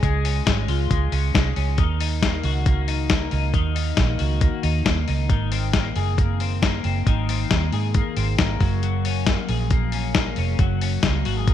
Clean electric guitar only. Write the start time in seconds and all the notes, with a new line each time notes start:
Already playing: C#4 F4
0.03 G#3
0.25 C#4
0.46 G#3
0.69 F4
0.91 G#3
1.12 C#4
1.35 G#3
1.57 C#4
1.78 D#3
2.01 D#4
2.23 A#3
2.45 F#4
2.67 A#3
2.88 D#4
3.10 A#3
3.32 D#4
3.54 D#3
3.76 D#4
3.97 A#3
4.19 F#4
4.41 A#3
4.63 D#4
4.85 A#3
5.08 D#4
5.30 D#3
5.52 C4
5.74 A#3
5.96 G#4
6.19 A#3
6.41 C4
6.63 A#3
6.84 C4
7.07 D#3
7.30 C4
7.51 A#3
7.73 G#4
7.96 A#3
8.17 C4
8.39 A#3
8.61 F#3
8.83 F#3
9.05 C#4
9.27 A#3
9.49 G#4
9.72 A#3
9.94 C#4
10.16 A#3
10.38 C#4
10.59 F#3
10.82 C#4
11.04 A#3
11.26 F#4
11.37 G#4
11.48 A#3